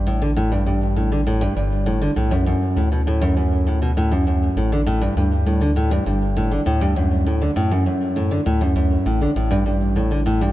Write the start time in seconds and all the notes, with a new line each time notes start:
Already playing: A1
0.07 A2
0.22 D3
0.37 A2
0.52 G2
0.66 G2
0.96 A2
1.12 D3
1.27 A2
1.41 G2
1.56 G1 G2
1.86 A2
2.02 D3
2.16 B1 A2
2.31 F#2
2.46 F#2
2.76 D2 A2
2.92 B2
3.07 A2
3.22 F#2
3.37 F#2
3.67 A2
3.82 B2
3.97 A2
4.12 F#2
4.27 F#2
4.56 A1 A2
4.72 D3
4.86 A2
5.01 G2
5.16 D2 G2
5.46 A2
5.61 D3
5.76 A2
5.91 G2
6.06 G1 G2
6.37 A2
6.51 D3
6.66 D2 A2
6.81 G2
6.96 F#2
7.27 A2
7.42 D3
7.56 F#2 A2
7.71 F#2
7.86 F#2
8.16 A2
8.31 D3
8.46 D2 A2
8.61 F#2
8.76 D2 F#2
9.06 A1 A2
9.21 D3
9.36 A1 A2
9.51 G2
9.66 G2
9.96 A2
10.11 D3
10.26 A2
10.41 G2